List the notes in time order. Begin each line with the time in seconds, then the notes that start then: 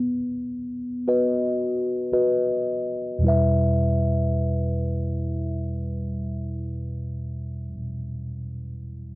Already playing: B3
1.08 F#4 B4 D#5
2.13 F#4 B4 D#5
3.18 E2 B2
3.23 G3 E4
3.27 B4 E5